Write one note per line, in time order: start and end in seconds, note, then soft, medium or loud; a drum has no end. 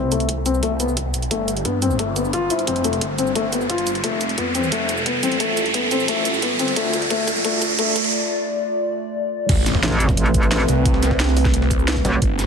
0.00 1.13 C2 medium
0.00 1.28 A3 medium
0.00 0.11 C4 medium
0.00 1.28 C4 medium
0.00 1.28 B4 medium
0.00 riser medium
0.12 0.28 A3 medium
0.12 closed hi-hat medium
0.12 cabasa medium
0.20 closed hi-hat soft
0.29 kick loud
0.29 closed hi-hat medium
0.46 0.56 C4 medium
0.46 closed hi-hat medium
0.46 cabasa medium
0.54 cabasa soft
0.63 0.69 A3 loud
0.63 kick medium
0.63 closed hi-hat medium
0.80 0.91 B3 medium
0.80 closed hi-hat medium
0.80 cabasa medium
0.88 cabasa soft
0.97 kick medium
0.97 closed hi-hat medium
1.14 1.30 B1 medium
1.14 closed hi-hat medium
1.14 cabasa medium
1.22 closed hi-hat soft
1.31 1.64 G1 medium
1.31 6.72 G3 medium
1.31 1.47 A3 medium
1.31 4.01 D4 medium
1.31 4.01 C5 medium
1.31 kick loud
1.31 closed hi-hat medium
1.48 closed hi-hat medium
1.48 cabasa medium
1.57 closed hi-hat soft
1.65 1.98 G2 loud
1.65 1.76 B3 medium
1.65 kick loud
1.65 closed hi-hat medium
1.82 1.93 C4 medium
1.82 closed hi-hat medium
1.82 cabasa medium
1.91 cabasa soft
1.99 2.49 G1 loud
1.99 2.06 A3 medium
1.99 kick loud
1.99 closed hi-hat medium
2.16 2.27 B3 medium
2.16 closed hi-hat medium
2.16 cabasa medium
2.25 cabasa soft
2.33 2.49 F4 loud
2.33 kick medium
2.33 closed hi-hat medium
2.50 2.61 E4 medium
2.50 closed hi-hat medium
2.50 cabasa medium
2.59 closed hi-hat soft
2.67 2.83 F1 loud
2.67 2.83 C4 medium
2.67 kick loud
2.67 closed hi-hat medium
2.76 closed hi-hat soft
2.84 3.00 F1 loud
2.84 3.00 A3 medium
2.84 closed hi-hat medium
2.84 cabasa medium
2.93 closed hi-hat soft
3.01 3.85 G1 loud
3.01 kick loud
3.01 closed hi-hat medium
3.18 3.29 C4 medium
3.18 closed hi-hat medium
3.18 cabasa medium
3.27 cabasa soft
3.35 3.42 A3 loud
3.35 kick loud
3.35 closed hi-hat medium
3.52 3.63 B3 medium
3.52 closed hi-hat medium
3.52 cabasa medium
3.61 cabasa soft
3.70 3.86 F4 loud
3.70 kick loud
3.70 closed hi-hat medium
3.78 closed hi-hat soft
3.87 4.02 G1 loud
3.87 closed hi-hat medium
3.87 cabasa medium
3.95 closed hi-hat soft
4.04 4.36 F1 medium
4.04 4.20 A3 medium
4.04 9.45 F4 medium
4.04 6.74 A4 medium
4.04 kick loud
4.04 closed hi-hat medium
4.21 closed hi-hat medium
4.21 cabasa medium
4.29 closed hi-hat soft
4.38 4.71 F2 loud
4.38 4.49 B3 medium
4.38 kick loud
4.38 closed hi-hat medium
4.55 4.66 C4 medium
4.55 closed hi-hat medium
4.55 cabasa medium
4.63 cabasa soft
4.72 5.22 F1 loud
4.72 4.88 A3 medium
4.72 kick loud
4.72 closed hi-hat medium
4.89 closed hi-hat medium
4.89 cabasa medium
4.97 cabasa soft
5.06 5.17 B3 medium
5.06 kick loud
5.06 closed hi-hat medium
5.23 6.58 A1 medium
5.23 5.34 C4 medium
5.23 closed hi-hat medium
5.23 cabasa medium
5.32 closed hi-hat soft
5.40 5.56 A3 medium
5.40 kick loud
5.40 closed hi-hat medium
5.57 closed hi-hat medium
5.57 cabasa medium
5.66 closed hi-hat soft
5.74 5.85 B3 medium
5.74 kick loud
5.74 closed hi-hat medium
5.91 6.02 C4 medium
5.91 closed hi-hat medium
5.91 cabasa medium
6.00 cabasa soft
6.08 6.24 A3 medium
6.08 kick loud
6.08 closed hi-hat medium
6.25 closed hi-hat medium
6.25 cabasa medium
6.34 cabasa soft
6.42 6.53 B3 medium
6.42 kick loud
6.42 closed hi-hat medium
6.59 6.75 G1 loud
6.59 6.70 C4 medium
6.59 closed hi-hat medium
6.59 cabasa medium
6.68 closed hi-hat soft
6.76 7.09 D2 medium
6.76 6.92 A3 medium
6.76 9.46 A3 medium
6.76 9.46 D5 medium
6.76 kick loud
6.76 closed hi-hat loud
6.93 kick loud
6.93 closed hi-hat medium
6.93 cabasa medium
7.02 closed hi-hat soft
7.10 7.43 D2 loud
7.10 7.27 A3 medium
7.10 kick loud
7.10 closed hi-hat loud
7.28 kick loud
7.28 closed hi-hat medium
7.28 cabasa medium
7.36 cabasa soft
7.45 7.94 D2 loud
7.45 7.61 A3 medium
7.45 kick loud
7.45 closed hi-hat loud
7.62 kick loud
7.62 closed hi-hat medium
7.62 cabasa medium
7.70 cabasa soft
7.79 7.95 A3 medium
7.79 kick loud
7.79 closed hi-hat medium
7.96 kick loud
7.96 closed hi-hat medium
7.96 cabasa medium
8.04 closed hi-hat soft
9.49 9.82 A1 medium
9.49 12.19 A3 medium
9.49 12.19 C4 medium
9.49 12.19 B4 medium
9.49 kick loud
9.49 closed hi-hat medium
9.49 closed hi-hat loud
9.49 crash loud
9.49 impact medium
9.66 snare soft
9.66 closed hi-hat medium
9.66 cabasa medium
9.75 kick medium
9.75 snare medium
9.83 10.16 A1 loud
9.83 snare loud
9.83 closed hi-hat medium
9.83 closed hi-hat loud
10.00 closed hi-hat medium
10.00 cabasa medium
10.09 kick loud
10.09 snare soft
10.09 cabasa soft
10.17 10.67 A1 loud
10.17 closed hi-hat medium
10.17 closed hi-hat loud
10.26 closed hi-hat soft
10.34 kick loud
10.34 closed hi-hat medium
10.34 cabasa medium
10.43 closed hi-hat soft
10.43 cabasa soft
10.51 snare loud
10.51 closed hi-hat medium
10.51 closed hi-hat loud
10.60 closed hi-hat soft
10.68 12.03 C2 medium
10.68 snare soft
10.68 closed hi-hat medium
10.68 cabasa medium
10.86 kick loud
10.86 closed hi-hat medium
10.86 closed hi-hat loud
10.94 snare medium
11.03 snare soft
11.03 closed hi-hat medium
11.03 cabasa medium
11.11 kick medium
11.11 snare soft
11.20 snare loud
11.20 closed hi-hat medium
11.37 snare medium
11.37 closed hi-hat medium
11.37 open hi-hat medium
11.37 cabasa medium
11.45 kick loud
11.45 snare soft
11.45 cabasa soft
11.54 closed hi-hat loud
11.54 closed hi-hat medium
11.62 snare soft
11.71 kick loud
11.71 closed hi-hat medium
11.71 cabasa medium
11.79 cabasa soft
11.88 snare loud
11.88 closed hi-hat medium
11.96 kick medium
11.96 closed hi-hat soft
12.05 12.21 B1 medium
12.05 snare loud
12.05 snare soft
12.05 closed hi-hat medium
12.05 cabasa medium
12.22 12.46 G1 loud
12.22 12.46 G3 medium
12.22 12.46 D4 medium
12.22 12.46 C5 medium
12.22 kick loud
12.22 closed hi-hat medium
12.39 snare soft
12.39 closed hi-hat medium
12.39 cabasa medium